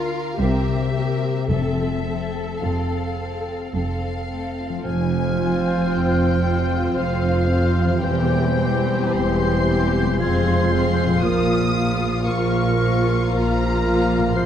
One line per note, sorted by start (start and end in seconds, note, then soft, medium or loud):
0.00 0.25 D2 medium
0.00 0.26 D2 medium
0.00 0.45 D3 soft
0.00 0.93 A#3 soft
0.00 0.45 D4 soft
0.00 0.39 F4 soft
0.00 0.40 F4 medium
0.00 0.44 F4 soft
0.00 0.39 A#4 soft
0.00 1.54 A#4 soft
0.00 0.12 D5 soft
0.00 0.40 F5 medium
0.00 0.44 F5 soft
0.14 0.44 D5 soft
0.39 1.34 C2 medium
0.39 1.54 C3 soft
0.39 0.92 C4 soft
0.39 1.46 G4 soft
0.39 0.92 A#4 soft
0.39 1.47 E5 medium
0.67 1.54 G3 soft
0.93 1.54 A#3 soft
0.93 1.48 C4 soft
0.93 1.48 A#4 soft
1.22 1.54 G4 soft
1.48 2.47 F1 soft
1.48 3.14 F2 soft
1.48 2.47 F2 soft
1.48 4.68 F3 soft
1.48 2.04 C4 soft
1.48 2.03 A4 soft
1.48 4.31 A4 soft
1.48 2.60 E5 medium
1.78 4.59 F4 soft
2.04 4.30 A3 soft
2.04 2.61 C4 soft
2.04 2.61 A4 soft
2.34 2.90 A4 soft
2.62 3.59 F1 soft
2.62 3.59 F2 soft
2.62 3.18 C4 soft
2.62 3.17 A4 soft
2.62 4.81 C5 soft
2.62 3.73 F5 soft
2.91 3.46 A4 soft
3.19 3.72 C4 soft
3.19 3.72 A4 soft
3.19 3.75 A5 soft
3.47 4.02 A4 soft
3.73 4.71 F1 soft
3.73 4.71 F2 soft
3.73 4.29 C4 soft
3.73 4.28 A4 soft
3.73 4.81 F5 soft
3.73 4.91 A5 soft
4.03 4.90 A4 soft
4.29 4.90 A3 soft
4.29 4.84 C4 soft
4.29 4.84 A4 soft
4.60 4.77 F4 soft
4.69 7.98 F3 soft
4.74 7.88 C4 soft
4.78 8.03 F4 soft
4.82 5.78 F1 medium
4.82 5.79 F2 soft
4.82 7.98 F3 soft
4.82 6.93 F3 soft
4.82 11.18 C4 soft
4.82 7.96 C5 soft
4.82 6.92 C5 soft
4.82 5.91 G#5 medium
4.82 6.91 F6 soft
5.37 6.42 C4 soft
5.37 6.41 F4 soft
5.37 6.42 F4 soft
5.37 6.42 C5 soft
5.91 6.84 F1 soft
5.91 6.84 F2 soft
5.91 6.97 G5 medium
6.43 7.47 C4 soft
6.43 7.47 F4 soft
6.43 7.47 C5 soft
6.96 7.89 F1 soft
6.96 7.90 F2 soft
6.96 8.04 F3 soft
6.96 8.00 C5 soft
6.96 8.00 F5 medium
6.96 8.00 F6 soft
7.49 8.01 C4 soft
7.49 8.01 F4 soft
7.49 8.02 F4 soft
7.49 8.01 C5 soft
7.85 10.15 E3 soft
7.89 11.20 C4 soft
7.93 10.19 G4 soft
7.98 10.14 C5 soft
8.02 9.02 E1 medium
8.02 9.02 E2 medium
8.02 9.14 E3 medium
8.02 10.16 G3 soft
8.02 8.58 C4 soft
8.02 8.57 G4 soft
8.02 8.58 G4 soft
8.02 8.57 C5 soft
8.02 9.13 C5 soft
8.02 9.15 G5 medium
8.02 9.13 G6 soft
8.58 9.66 C4 soft
8.58 9.66 G4 soft
8.58 9.66 C5 soft
9.14 10.07 E1 medium
9.14 10.07 E2 soft
9.14 10.22 E3 soft
9.14 10.17 C5 soft
9.14 10.18 C6 medium
9.14 10.17 G6 soft
9.67 10.18 C4 soft
9.67 10.18 G4 soft
9.67 10.18 C5 soft
10.01 11.08 F3 soft
10.06 11.20 G#3 soft
10.10 11.13 F4 soft
10.15 11.24 C5 soft
10.15 11.06 C5 soft
10.15 10.69 F5 soft
10.19 11.10 F1 soft
10.19 11.10 F2 medium
10.19 11.05 F3 soft
10.19 11.23 G#3 soft
10.19 10.70 C4 soft
10.19 10.70 F4 soft
10.19 10.69 G#4 soft
10.19 11.20 C6 medium
10.19 10.73 G#6 soft
10.70 11.22 C4 soft
10.70 11.22 F4 soft
10.70 11.21 G#4 soft
10.70 11.21 F5 soft
10.70 11.24 G6 soft
11.05 14.31 A#2 soft
11.09 14.21 F3 soft
11.14 14.26 F4 soft
11.18 14.38 A#4 soft
11.18 12.27 D#6 medium
11.22 12.15 A#1 medium
11.22 12.15 A#2 medium
11.22 14.46 F3 medium
11.22 11.98 F3 soft
11.22 14.18 A#3 medium
11.22 11.74 A#3 soft
11.22 11.74 F4 soft
11.22 11.98 A#4 soft
11.22 11.73 F5 soft
11.22 11.99 F6 soft
11.75 12.79 A#3 soft
11.75 12.78 F4 soft
11.75 12.79 F4 soft
11.75 12.78 F5 soft
12.25 13.20 A#1 medium
12.25 13.20 A#2 medium
12.25 13.29 F3 medium
12.25 13.27 A#4 medium
12.25 13.33 C#6 medium
12.25 13.28 F6 medium
12.80 13.82 A#3 soft
12.80 13.82 F4 soft
12.80 13.82 F5 soft
13.32 14.24 A#1 medium
13.32 14.24 A#2 medium
13.32 14.34 F3 medium
13.32 14.38 A#4 medium
13.32 14.36 A#5 medium
13.32 14.33 F6 soft
13.84 14.36 A#3 soft
13.84 14.35 F4 soft
13.84 14.36 F4 soft
13.84 14.35 F5 soft
14.18 14.46 A2 soft
14.22 14.46 F3 soft
14.27 14.46 F4 soft
14.31 14.46 A2 medium
14.31 14.46 C4 medium
14.31 14.46 C5 soft
14.31 14.46 C6 medium
14.31 14.46 F6 medium
14.36 14.46 A1 medium
14.36 14.46 F3 medium
14.36 14.46 C5 medium